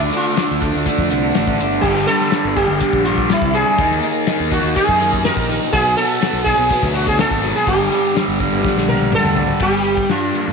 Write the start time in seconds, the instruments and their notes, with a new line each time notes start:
Already playing: distorted electric guitar D3 A3 D4
0.11 distorted electric guitar A3 D4, closed hi-hat
0.17 sitar F4
0.35 distorted electric guitar D3 A3 D4, snare, closed hi-hat
0.51 fingered electric bass D2
0.61 distorted electric guitar D3 A3 D4, kick, closed hi-hat
0.75 fingered electric bass D2
0.86 distorted electric guitar D3 A3 D4, kick, closed hi-hat
0.98 fingered electric bass F2, kick
1.10 fingered electric bass C2, distorted electric guitar A3 D4, closed hi-hat
1.35 fingered electric bass A1, distorted electric guitar D3 A3 D4, snare, closed hi-hat
1.47 kick
1.59 fingered electric bass G1, distorted electric guitar A3 D4, closed hi-hat
1.81 fingered electric bass G1, distorted electric guitar G2 D3 G3, sitar G4, kick, crash
2.07 distorted electric guitar D3 G3, sitar A4, closed hi-hat
2.21 snare
2.31 distorted electric guitar G2 D3 G3, snare, closed hi-hat
2.45 fingered electric bass G1
2.56 distorted electric guitar G2 D3 G3, sitar G4, kick, closed hi-hat
2.70 fingered electric bass G1
2.81 distorted electric guitar G2 D3 G3, kick, closed hi-hat
2.93 fingered electric bass A#1, kick
3.05 distorted electric guitar D3 G3, sitar F4, closed hi-hat
3.18 kick
3.30 distorted electric guitar G2 D3 G3, sitar E4, snare, closed hi-hat
3.41 fingered electric bass C2, kick
3.54 distorted electric guitar D3 G3, sitar G#4, closed hi-hat
3.78 fingered electric bass D#2, distorted electric guitar D#3 A#3 D#4, kick, closed hi-hat
3.91 snare
4.03 distorted electric guitar A#3 D#4, closed hi-hat
4.27 distorted electric guitar D#3 A#3 D#4, snare, closed hi-hat
4.40 fingered electric bass D#2
4.51 distorted electric guitar D#3 A#3 D#4, sitar F#4, kick, closed hi-hat
4.63 fingered electric bass D#2
4.75 distorted electric guitar D#3 A#3 D#4, sitar G#4, kick, closed hi-hat
4.89 fingered electric bass F#2, kick
4.99 distorted electric guitar A#3 D#4, closed hi-hat
5.13 kick
5.25 distorted electric guitar D#3 A#3 D#4, sitar A#4, snare, closed hi-hat
5.37 fingered electric bass A#1, kick
5.49 distorted electric guitar A#3 D#4, closed hi-hat
5.62 snare
5.72 fingered electric bass B1, distorted electric guitar B2 F#3 B3, sitar G#4, kick, closed hi-hat
5.97 distorted electric guitar F#3 B3, sitar A4, closed hi-hat
6.21 distorted electric guitar B2 F#3 B3, snare, closed hi-hat
6.33 fingered electric bass B1
6.44 distorted electric guitar B2 F#3 B3, sitar G#4, kick, closed hi-hat
6.58 fingered electric bass B1
6.70 distorted electric guitar B2 F#3 B3, kick, closed hi-hat
6.83 fingered electric bass D2, kick, snare
6.94 distorted electric guitar F#3 B3, sitar F#4, closed hi-hat
7.07 sitar G#4, kick
7.18 distorted electric guitar B2 F#3 B3, sitar A4, snare, closed hi-hat
7.30 fingered electric bass G#1, kick
7.42 distorted electric guitar F#3 B3, closed hi-hat
7.56 sitar G#4
7.67 fingered electric bass G1, distorted electric guitar G2 D3 G3, sitar G4, kick, closed hi-hat
7.90 distorted electric guitar D3 G3, closed hi-hat
8.15 distorted electric guitar G2 D3 G3, snare, closed hi-hat
8.28 fingered electric bass G1
8.39 distorted electric guitar G2 D3 G3, kick, closed hi-hat
8.52 fingered electric bass G1
8.63 distorted electric guitar G2 D3 G3, kick, snare
8.76 fingered electric bass A#1, snare
8.88 distorted electric guitar D3 G3, sitar A#4, high tom
9.02 high tom
9.12 distorted electric guitar G2 D3 G3, sitar A4, mid tom
9.23 fingered electric bass D2, mid tom
9.36 distorted electric guitar D3 G3, floor tom
9.47 floor tom
9.59 fingered electric bass G1, distorted electric guitar G3, sitar G4, kick, crash
9.85 distorted electric guitar G4, closed hi-hat
9.97 kick
10.09 fingered electric bass G2, distorted electric guitar D4, sitar F4, snare, closed hi-hat
10.34 distorted electric guitar A#3, closed hi-hat
10.48 fingered electric bass G2